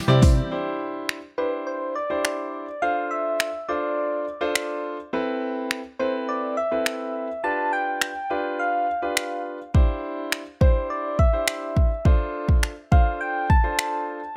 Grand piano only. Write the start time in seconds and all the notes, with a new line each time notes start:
0.08 G3 C4 E4 G4 D5
0.51 D4 E4 G4 C5
1.38 D4 E4 G4 C5
2.10 D4 E4 G4 C5
2.82 D4 F4 A4 C5
3.69 D4 F4 A4 C5
4.41 D4 F4 A4 C5
5.13 C4 E4 A4 B4
5.99 C4 E4 A4 B4
6.71 C4 E4 A4 B4
7.43 D4 F4 G4 B4
8.30 D4 F4 G4 B4
9.02 D4 F4 G4 B4
9.74 D4 E4 G4 C5
10.61 D4 E4 G4 C5
11.33 D4 E4 G4 C5
12.05 D4 F4 A4 C5
12.92 D4 F4 A4 C5
13.64 D4 F4 A4 C5